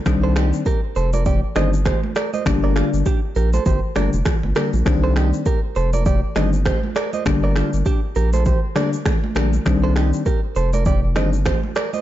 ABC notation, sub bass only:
X:1
M:4/4
L:1/16
Q:"Swing 16ths" 1/4=100
K:Cdor
V:1 name="Sub bass" clef=bass
C,,4 z2 F,,,4 G,,,3 z3 | G,,,3 G,,, z2 B,,,2 G,,, z G,,, F,,, z G,,, z B,,, | C,,4 z2 F,,,4 G,,,3 z3 | G,,,3 G,,, z2 B,,,3 z4 z B,,,2 |
C,,4 z2 F,,,4 G,,,3 z3 |]